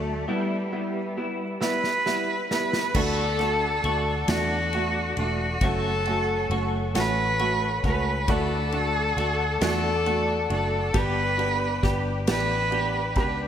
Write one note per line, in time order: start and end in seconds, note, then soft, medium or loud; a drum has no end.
0.00 0.25 D2 medium
0.00 0.28 F#3 medium
0.00 0.32 A3 loud
0.00 0.37 A3 medium
0.00 0.28 D4 medium
0.00 0.26 F#4 medium
0.00 0.25 A4 medium
0.00 0.26 D5 medium
0.00 0.26 A5 medium
0.28 0.54 G3 medium
0.28 2.95 G3 medium
0.28 1.62 G3 medium
0.28 0.54 B3 medium
0.28 0.54 E4 medium
0.28 1.16 E4 medium
0.28 2.92 G4 medium
0.28 2.92 B4 medium
0.28 2.92 E5 medium
0.28 2.92 B5 medium
0.72 0.98 G3 medium
0.72 0.98 B3 medium
0.72 1.60 B3 medium
0.72 0.99 E4 medium
1.17 1.43 G3 medium
1.17 1.43 B3 medium
1.17 2.05 E4 medium
1.17 1.43 E4 medium
1.61 1.87 G3 medium
1.61 1.87 B3 medium
1.61 2.49 B3 medium
1.61 1.87 E4 loud
1.61 2.47 B4 loud
1.61 snare medium
1.84 snare medium
2.06 2.32 G3 medium
2.06 2.32 B3 medium
2.06 2.32 E4 medium
2.06 3.04 E4 medium
2.06 snare medium
2.51 2.77 G3 medium
2.51 2.95 B3 medium
2.51 2.77 B3 medium
2.51 2.77 E4 medium
2.51 2.97 B4 loud
2.51 snare medium
2.73 snare medium
2.94 3.80 D2 loud
2.94 5.61 A3 medium
2.94 3.21 A3 loud
2.94 3.21 D4 medium
2.94 3.84 F#4 medium
2.94 3.21 F#4 loud
2.94 8.23 A4 medium
2.94 4.32 A4 loud
2.94 5.58 D5 medium
2.94 8.24 F#5 medium
2.94 5.58 D6 medium
2.94 kick loud
2.94 crash loud
3.39 3.65 A3 medium
3.39 4.28 D4 medium
3.39 3.65 D4 medium
3.39 3.66 F#4 medium
3.39 snare soft
3.39 ride soft
3.84 4.25 D2 loud
3.84 4.10 A3 medium
3.84 4.10 D4 medium
3.84 4.73 F#4 medium
3.84 4.11 F#4 medium
3.84 ride soft
4.28 5.13 E2 loud
4.28 4.54 A3 medium
4.28 5.17 D4 medium
4.28 4.54 D4 medium
4.28 4.55 F#4 loud
4.28 5.18 F#4 loud
4.28 snare loud
4.28 ride medium
4.73 4.99 A3 medium
4.73 4.99 D4 medium
4.73 5.62 F#4 medium
4.73 5.00 F#4 medium
4.73 ride soft
5.17 5.59 E1 medium
5.17 5.44 A3 medium
5.17 5.71 D4 medium
5.17 5.44 D4 medium
5.17 5.44 F#4 medium
5.17 5.66 F#4 medium
5.17 ride soft
5.61 6.46 F#1 loud
5.61 8.28 A3 medium
5.61 5.88 A3 medium
5.61 5.89 C#4 medium
5.61 6.51 F#4 medium
5.61 5.89 F#4 loud
5.61 6.63 A4 loud
5.61 8.25 C#5 medium
5.61 8.25 C#6 medium
5.61 kick loud
5.61 ride medium
6.05 6.33 A3 medium
6.05 6.94 C#4 medium
6.05 6.33 C#4 medium
6.05 6.33 F#4 medium
6.05 ride soft
6.50 6.92 F#1 loud
6.50 6.77 A3 medium
6.50 6.77 C#4 medium
6.50 7.39 F#4 medium
6.50 6.77 F#4 medium
6.50 ride soft
6.94 7.79 A1 loud
6.94 7.21 A3 loud
6.94 7.21 C#4 medium
6.94 7.83 C#4 medium
6.94 7.21 F#4 loud
6.94 7.81 B4 loud
6.94 snare loud
6.94 ride medium
7.39 7.66 A3 medium
7.39 7.66 C#4 medium
7.39 8.28 F#4 medium
7.39 7.66 F#4 medium
7.39 ride soft
7.84 8.25 C#2 medium
7.84 8.10 A3 medium
7.84 8.37 C#4 medium
7.84 8.11 C#4 medium
7.84 8.10 F#4 medium
7.84 8.31 B4 loud
7.84 kick loud
7.84 ride soft
8.28 9.13 D2 loud
8.28 10.94 A3 medium
8.28 8.54 A3 medium
8.28 8.55 D4 medium
8.28 9.16 F#4 medium
8.28 8.55 F#4 loud
8.28 10.93 A4 medium
8.28 9.62 A4 loud
8.28 10.92 D5 medium
8.28 10.93 F#5 medium
8.28 13.48 D6 medium
8.28 kick loud
8.28 ride medium
8.72 8.99 A3 medium
8.72 9.61 D4 medium
8.72 8.99 D4 medium
8.72 8.99 F#4 medium
8.72 ride soft
9.17 9.59 D2 loud
9.17 9.43 A3 medium
9.17 9.43 D4 medium
9.17 9.43 F#4 medium
9.17 10.04 F#4 medium
9.17 ride soft
9.61 10.46 E2 loud
9.61 9.87 A3 loud
9.61 9.87 D4 medium
9.61 10.49 D4 medium
9.61 9.88 F#4 loud
9.61 10.47 A4 loud
9.61 snare loud
9.61 ride medium
10.06 10.32 A3 medium
10.06 10.32 D4 medium
10.06 10.94 F#4 medium
10.06 10.32 F#4 medium
10.06 ride soft
10.50 10.92 F#1 medium
10.50 10.76 A3 medium
10.50 10.76 D4 medium
10.50 11.39 D4 medium
10.50 10.76 F#4 medium
10.50 10.98 A4 medium
10.50 ride soft
10.93 11.79 G1 loud
10.93 11.20 B3 medium
10.93 13.48 B3 medium
10.93 11.20 D4 medium
10.93 11.20 G4 loud
10.93 11.82 G4 medium
10.93 13.48 B4 medium
10.93 11.96 B4 loud
10.93 13.48 D5 medium
10.93 13.48 G5 medium
10.93 kick loud
10.93 ride medium
11.38 11.64 B3 medium
11.38 11.64 D4 medium
11.38 12.28 D4 medium
11.38 11.65 G4 medium
11.38 ride soft
11.83 12.25 G1 loud
11.83 12.09 B3 medium
11.83 12.09 D4 medium
11.83 12.09 G4 medium
11.83 12.71 G4 medium
11.83 kick medium
11.83 snare soft
11.83 ride soft
12.27 13.16 A1 loud
12.27 12.54 B3 medium
12.27 12.54 D4 medium
12.27 13.17 D4 medium
12.27 12.54 G4 loud
12.27 13.14 B4 loud
12.27 snare loud
12.27 ride medium
12.71 12.98 B3 medium
12.71 12.98 D4 medium
12.71 12.98 G4 medium
12.71 13.48 G4 medium
12.71 ride soft
13.16 13.48 C#2 medium
13.16 13.43 B3 medium
13.16 13.43 D4 medium
13.16 13.48 D4 medium
13.16 13.43 G4 medium
13.16 13.39 B4 medium
13.16 kick loud
13.16 ride soft